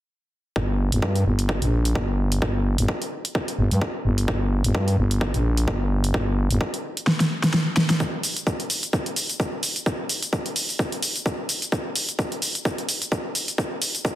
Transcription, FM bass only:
0.56 G1
0.92 G1
1.02 G2
1.26 G1
1.62 A#1
1.95 G1
2.42 G1
2.78 G1
3.58 G1
3.71 G2
4.05 G1
4.28 G1
4.64 G1
4.75 G2
4.98 G1
5.34 A#1
5.68 G1
6.14 G1
6.50 G1

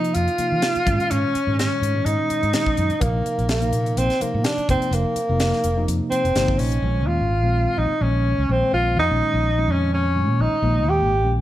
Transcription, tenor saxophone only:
Already playing: D#4
0.14 F4
1.11 C#4
1.59 C#4
2.05 D#4
3.01 A#3
3.50 A#3
3.98 C4
4.22 A#3
4.45 D4
4.70 C4
4.94 A#3
6.10 C4
6.58 C#4
7.07 F4
7.78 D#4
8.03 C#4
8.52 C4
8.74 F4
8.99 D#4
9.71 C#4
9.94 C#4
10.41 D#4
10.89 G4

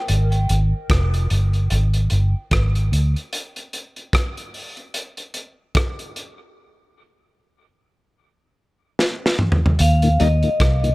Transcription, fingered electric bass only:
0.09 G#1
0.50 G#1
0.90 F1
1.31 G1
1.72 G#1
2.12 G1
2.52 G#1
2.92 D2
9.80 D#2
10.21 D#2
10.60 C2

